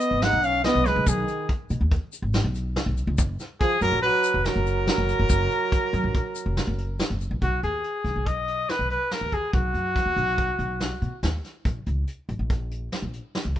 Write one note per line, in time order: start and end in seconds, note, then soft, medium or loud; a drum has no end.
0.00 0.25 B3 medium
0.00 0.25 D#5 medium
0.00 closed hi-hat medium
0.00 shaker soft
0.11 0.27 G#1 medium
0.22 0.46 D#4 medium
0.22 0.46 F#5 loud
0.22 snare loud
0.22 closed hi-hat medium
0.22 shaker soft
0.33 0.65 B1 medium
0.43 0.65 C#4 medium
0.43 0.65 F5 medium
0.43 closed hi-hat medium
0.43 shaker soft
0.64 0.88 B3 medium
0.64 0.88 D#5 medium
0.64 snare loud
0.64 closed hi-hat medium
0.75 0.91 B1 medium
0.85 1.09 G#3 medium
0.85 1.09 B4 medium
0.85 snare soft
0.85 closed hi-hat medium
0.85 shaker soft
0.96 1.04 B1 medium
1.06 1.23 B1 medium
1.06 1.49 D#3 medium
1.06 1.49 G#4 medium
1.06 kick medium
1.06 closed hi-hat medium
1.06 shaker medium
1.28 closed hi-hat medium
1.28 shaker soft
1.49 kick medium
1.49 closed hi-hat medium
1.70 1.78 B2 medium
1.70 closed hi-hat medium
1.70 shaker soft
1.81 1.97 D#2 medium
1.92 kick medium
1.92 closed hi-hat medium
2.13 closed hi-hat medium
2.13 shaker soft
2.22 2.39 G#1 medium
2.34 snare medium
2.34 closed hi-hat medium
2.34 shaker soft
2.44 2.76 B1 medium
2.55 closed hi-hat medium
2.55 shaker soft
2.76 snare loud
2.76 closed hi-hat medium
2.86 3.02 B1 medium
2.97 closed hi-hat medium
2.97 shaker soft
3.07 3.15 C#2 medium
3.18 3.34 F#1 medium
3.18 kick loud
3.18 closed hi-hat medium
3.18 shaker medium
3.40 snare soft
3.40 closed hi-hat medium
3.40 shaker soft
3.60 3.80 F3 medium
3.60 3.80 G#4 loud
3.60 kick loud
3.60 closed hi-hat medium
3.80 3.89 F#2 medium
3.80 4.01 F#3 medium
3.80 4.01 A#4 loud
3.80 closed hi-hat medium
3.80 shaker soft
3.92 4.08 A#1 medium
4.02 4.44 F#3 medium
4.02 4.46 B4 loud
4.02 closed hi-hat medium
4.24 closed hi-hat medium
4.24 shaker medium
4.34 4.50 F1 medium
4.44 6.98 F#3 medium
4.44 6.99 A#4 medium
4.44 snare loud
4.44 closed hi-hat medium
4.44 shaker soft
4.56 4.88 F#1 medium
4.66 closed hi-hat medium
4.66 shaker soft
4.87 snare loud
4.87 closed hi-hat medium
4.98 5.14 F#1 medium
5.09 closed hi-hat medium
5.09 shaker soft
5.19 5.27 F#1 medium
5.30 5.46 F#1 medium
5.30 kick loud
5.30 closed hi-hat medium
5.30 shaker medium
5.51 closed hi-hat medium
5.72 kick loud
5.72 closed hi-hat medium
5.93 6.01 F#2 medium
5.93 closed hi-hat medium
6.04 6.20 A#1 medium
6.15 kick loud
6.15 closed hi-hat medium
6.36 closed hi-hat medium
6.36 shaker soft
6.46 6.62 F1 medium
6.57 snare medium
6.57 closed hi-hat medium
6.67 6.99 F#1 medium
6.78 closed hi-hat medium
6.99 snare loud
6.99 closed hi-hat medium
6.99 shaker soft
7.10 7.26 F#1 medium
7.21 closed hi-hat medium
7.21 shaker soft
7.31 7.39 A#1 medium
7.42 7.58 B1 medium
7.42 7.62 F#4 medium
7.42 kick medium
7.42 closed hi-hat medium
7.63 7.79 D#2 medium
7.63 8.28 G#4 medium
7.63 closed hi-hat medium
7.84 closed hi-hat medium
8.04 8.13 B1 medium
8.04 snare soft
8.04 closed hi-hat medium
8.16 8.64 B1 medium
8.26 8.71 D#5 medium
8.26 kick medium
8.26 closed hi-hat medium
8.48 closed hi-hat medium
8.69 8.90 B4 medium
8.69 snare medium
8.69 closed hi-hat medium
8.79 8.95 B1 medium
8.90 9.14 B4 medium
8.90 closed hi-hat medium
9.11 9.35 A#4 medium
9.11 snare loud
9.11 closed hi-hat medium
9.21 9.37 D#2 medium
9.32 9.53 G#4 medium
9.32 kick medium
9.32 closed hi-hat medium
9.53 9.69 B1 medium
9.53 11.19 F#4 medium
9.53 kick loud
9.53 closed hi-hat medium
9.74 9.98 F#2 medium
9.74 closed hi-hat medium
9.96 kick medium
9.96 snare soft
9.96 closed hi-hat medium
10.06 10.14 D#2 medium
10.16 10.49 B1 medium
10.16 closed hi-hat medium
10.38 kick medium
10.38 closed hi-hat medium
10.59 10.91 B1 medium
10.59 closed hi-hat medium
10.80 snare medium
10.80 closed hi-hat medium
11.02 11.10 B2 medium
11.02 closed hi-hat medium
11.23 11.39 D#2 medium
11.23 snare loud
11.23 closed hi-hat medium
11.44 snare soft
11.44 closed hi-hat medium
11.65 11.81 A#1 medium
11.65 kick medium
11.65 closed hi-hat medium
11.86 12.03 C#2 medium
11.86 closed hi-hat medium
12.07 closed hi-hat medium
12.29 12.37 A#1 medium
12.29 closed hi-hat medium
12.39 12.87 A#1 medium
12.50 kick loud
12.50 closed hi-hat medium
12.71 closed hi-hat medium
12.92 snare loud
12.92 closed hi-hat medium
13.02 13.19 A#1 medium
13.13 closed hi-hat medium
13.35 snare loud
13.35 closed hi-hat medium
13.45 13.60 C#2 medium
13.56 kick medium
13.56 closed hi-hat soft